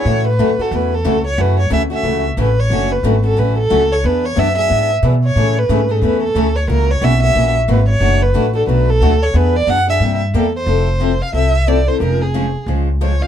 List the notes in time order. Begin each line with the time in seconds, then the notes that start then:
Already playing: C#5
0.05 A2 C#3 E3 A3 C#4 F#4
0.28 B4
0.39 F#2 C#3 E3 A3 C#4 F#4
0.59 A3 C#4 F#4 A4, muted upright bass stroke
0.71 E2 C#3 E3 A3 C#4 F#4
0.76 B4
0.94 A4
1.05 C#2 C#3 E3 A3 C#4 F#4
1.27 C#5
1.37 F#2 C#3 E3 A3 C#4 F#4 B4
1.59 C#5
1.70 D2 C#3 E3 A3 C#4 F#4 E5
1.90 A3 C#4 F#4
1.94 E5
2.03 C#2 C#3 E3 A3 C#4 F#4
2.37 A1 C#3 E3 A3 C#4 F#4 B4
2.59 C#5
2.70 F#1 D3 F#3 A3 C#4 F#4
2.92 B4
3.03 G#1 D3 F#3 A3 C#4 F#4
3.24 A3 C#4 F#4 A4
3.37 A1 D3 F#3 A3 C#4 F#4 B4
3.58 A4
3.70 C#2 D3 F#3 A3 C#4 F#4
3.92 C#5
4.04 E2 E3 B3 D4 G#4 B4
4.25 C#5
4.36 F#2 E3 B3 D4 G#4 E5
4.56 B3 D4 G#4 E5
4.68 G#2 E3 B3 D4 G#4
5.02 B2 E3 B3 D4 G#4 B4
5.24 C#5
5.36 A2 C#3 E3 A3 C#4 G#4
5.58 B4
5.69 G#2 C#3 E3 A3 C#4 G#4
5.89 A3 C#4 G#4 A4
6.01 E2 C#3 E3 A3 C#4 G#4 B4
6.23 A4
6.35 D2 C#3 E3 A3 C#4 G#4
6.56 C#5
6.68 C#2 C#3 E3 A#3 C#4 F#4 A#4
6.91 C#5
7.01 B1 C#3 E3 A#3 C#4 F#4 E5
7.22 A#3 C#4 F#4 E5
7.35 A#1 C#3 E3 A#3 C#4 F#4
7.68 G#1 C#3 E3 A#3 C#4 F#4 B4
7.89 C#5
8.00 F#1 B2 F#3 A3 D4 F#4
8.23 B4
8.34 A1 B2 F#3 A3 D4 F#4
8.53 A3 D4 F#4 A4
8.67 B1 B2 F#3 A3 D4 F#4 B4
8.89 A4
9.01 D2 B2 F#3 A3 D4 F#4
9.22 C#5
9.34 E2 E3 B3 D4 G#4 B4
9.56 D5
9.67 F#2 E3 B3 D4 G#4 F#5
9.87 B3 D4 G#4 E5
10.00 G2 C3 G3 A#3 E4 G4
10.34 E2 C3 G3 A#3 E4 G4 A4
10.56 C5
10.66 F1 F3 C4 E4 A4
11.00 F3 C4 E4 A4
11.22 F5
11.33 C2 F3 C4 E4 A4 E5
11.67 F3 C4 E4 A4 D5
11.86 C4 E4 A4 C5
12.00 F1 F3 G#3 C#4 F4 A#4 C5
12.21 G#4
12.34 F3 G#3 C#4 F4 C5
12.66 C#2 F3 G#3 C#4 F4 C5
13.01 F3 G#3 C#4 F4 C5 C#5
13.20 C#4 F4 C5 F5